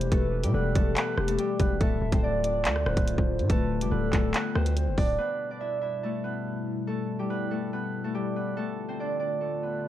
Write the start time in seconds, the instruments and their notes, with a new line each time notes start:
Already playing: 808-style bass E1, analog synth pad B2 E3 G4, harp A3 B3 D4 E4 A4 B4 D5 E5
0.01 closed hi-hat
0.12 808-style bass E1, harp A3 A4, soft synth lead B4, kick, closed hi-hat
0.43 808-style bass B2, harp G3 G4, closed hi-hat
0.54 808-style bass E1, harp B3 B4, soft synth lead A4
0.75 808-style bass E1, harp A3 A4, kick, closed hi-hat
0.96 harp B3 B4, clap, closed hi-hat
1.17 808-style bass E1, soft synth lead G4, cross-stick
1.28 harp A3 A4, closed hi-hat
1.39 harp G3 G4, closed hi-hat
1.60 808-style bass E1, harp B3 B4, kick, closed hi-hat
1.81 808-style bass D1, analog synth pad D3 A3 F4, harp A3 A4, soft synth lead E5, kick, closed hi-hat
2.02 808-style bass D1
2.12 808-style bass D1, harp C4 C5, kick, closed hi-hat
2.23 harp D4 D5, soft synth lead D5
2.44 harp D4 D5, closed hi-hat
2.65 808-style bass D2, harp A3 A4, clap, closed hi-hat
2.76 cross-stick
2.86 808-style bass D1, harp B3 B4, soft synth lead C5, cross-stick
2.97 808-style bass D1, kick, closed hi-hat
3.08 closed hi-hat
3.18 808-style bass D1, kick
3.39 808-style bass A2, closed hi-hat
3.50 808-style bass D1, harp A3 A4, soft synth lead B4, kick, closed hi-hat
3.81 808-style bass F1, harp G3 G4, closed hi-hat
3.91 808-style bass D1, harp B3 B4, soft synth lead A4
4.13 808-style bass D1, harp A3 A4, kick, clap, closed hi-hat
4.34 harp B3 B4, clap, closed hi-hat
4.55 808-style bass D2, harp C4 C5, soft synth lead B4, cross-stick
4.66 closed hi-hat
4.77 soft synth lead C5, closed hi-hat
4.87 808-style bass F1
4.98 808-style bass D1, harp D4 D5, soft synth lead D5, kick, open hi-hat
5.19 analog synth pad B2 G3 E4, harp B3 B4
5.51 harp D4 D5
5.61 harp E4 E5
5.81 harp E4 E5
6.03 harp A3 A4
6.24 harp B3 B4
6.88 harp A3 A4
7.19 harp G3 G4
7.30 harp B3 B4
7.51 harp A3 A4
7.73 harp B3 B4
8.04 harp A3 A4
8.15 harp G3 G4
8.36 harp B3 B4
8.57 analog synth pad D3 A3 F4, harp A3 A4
8.88 harp C4 C5
9.00 harp D4 D5
9.19 harp D4 D5
9.41 harp A3 A4
9.63 harp B3 B4